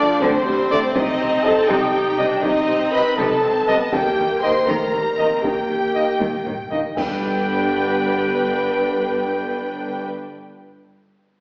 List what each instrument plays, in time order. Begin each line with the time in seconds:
Already playing: viola section F3, french horn section D4, violin section D5
0.20 double bass section D2, cello section D3, viola section A3, french horn section C4, violin section C5, taiko
0.45 double bass section D2, cello section D3, viola section G3
0.70 double bass section D2, trombone section D3 A3, cello section D3, viola section A3, trumpet D5
0.94 double bass section C2, cello section C3, viola section C4, french horn section D#4, violin section D#5, taiko
1.19 double bass section C2, cello section C3
1.43 trombone section C3 C4, french horn section A4, trumpet D#5, violin section A5
1.69 double bass section C2, cello section C3, viola section D#4, french horn section G4, violin section G5, taiko
1.94 double bass section C2, cello section C3, viola section D#4
2.18 double bass section C2, trombone section C3 C4, cello section C3, viola section D4, trumpet D#5
2.42 double bass section C2, cello section C3, viola section C4, french horn section D#4, violin section D#5, taiko
2.69 double bass section C2, cello section C3
2.93 trombone section C3 C4, french horn section B4, trumpet D#5, violin section B5
3.17 double bass section C2, cello section C3, viola section D#4, french horn section A4, violin section A5, taiko
3.42 double bass section C2, cello section C3, viola section C4
3.66 double bass section C2, cello section C3, trombone section C3 C4, viola section B3, trumpet D#5
3.92 double bass section D#2, cello section D#3, viola section A#3, french horn section G4, violin section G5, taiko
4.17 double bass section D#2, cello section D#3
4.41 trombone section D#3 A#3, french horn section C5, trumpet D#5, violin section C6
4.66 double bass section D#2, cello section D#3, viola section A3, french horn section A#4, violin section A#5, taiko
4.92 double bass section D#2, cello section D#3, viola section G3
5.17 double bass section D#2, trombone section D#3 A#3, cello section D#3, viola section C4, trumpet D#5
5.42 double bass section D#2, cello section D#3, viola section A#3, french horn section G4, violin section G5, taiko
5.68 double bass section D#2, cello section D#3
5.94 trombone section D#3 A#3, trumpet D#5
6.20 double bass section D#2, cello section D#3, taiko high
6.46 double bass section D#2, cello section D#3, taiko low-mid
6.71 double bass section D#2, cello section D#3, trombone section D#3 A#3, trumpet D#5, taiko low
6.95 double bass section G1, cello section G2, trombone section D3 B3, viola section D4 B4, french horn section G4, violin section G5, trumpet G5, concert bass drum, taiko, crash